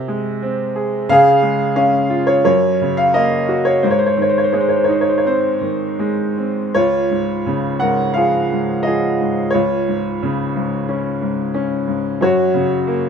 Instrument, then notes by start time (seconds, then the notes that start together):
upright piano
Already playing: C3
0.08 G#3
0.42 C4
0.76 G#4
1.09 C#3 G#4 F5
1.42 G#3
1.76 C#4 F5
2.10 F4
2.27 C#5
2.45 F#2 A#4 C#5
2.81 C#3
2.97 F5
3.14 A#3 D#5
3.49 F#4
3.65 C#5
3.83 G#2 C5
3.91 C#5
3.98 C5
4.06 C#5
4.13 D#3 C5
4.22 C#5
4.29 C5
4.38 C#5
4.44 C5
4.53 G#3 C#5
4.61 C5
4.69 C#5
4.76 C5
4.84 C#5
4.89 D#4 C5
5.01 C#5
5.09 C5
5.18 C#5
5.25 C4 C5
5.61 D#3
5.99 G#3
6.38 C4
6.75 C#2 F4 C#5
7.11 G#2
7.46 C#3
7.80 G#2 A#4 F#5
8.14 F3 G#4 F5
8.52 G#2
8.83 F3 D#5
8.87 G#4
9.21 G#2
9.51 C#2 C#5
9.55 F4
9.88 G#2
10.23 C#3
10.56 G#2
10.89 C#4
11.22 G#2
11.54 C#4
11.88 G#2
12.21 F#2 F#4 C#5
12.54 C#3
12.87 A#3